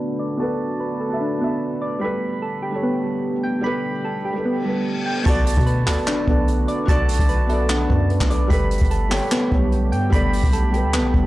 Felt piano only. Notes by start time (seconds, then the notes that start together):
Already playing: B3 F#4 A4 D5
0.37 B3 F#4 A4
0.42 B4
1.09 B3 F#4 A4
1.14 E5
1.39 B3 F#4 A4
1.44 E5
1.99 G3 G4 A4
2.04 B4
2.71 G3 G4 A4
2.76 C#5
3.61 G3 G4 A4
3.66 B4
4.33 G3 G4 A4
4.38 B4
4.63 G3 G4 A4
4.68 B4
5.24 B3 F#4 A4
5.29 D5
5.84 B3 F#4 A4
5.89 D5
6.25 B3 F#4 A4
6.30 D5
6.85 B3 F#4 A4
6.90 D5
7.47 B3 F#4 A4 E5
7.52 D5
7.69 F#5
7.89 D5
8.10 B4
8.27 B3 F#4 A4
8.32 D5
8.48 G3 G4 A4
8.53 B4
9.09 G3 G4 A4
9.14 C#5
9.50 G3 G4 A4
9.55 C#5
10.10 G3 G4 A4
10.15 D5
10.71 G3 G4 A4
10.76 B4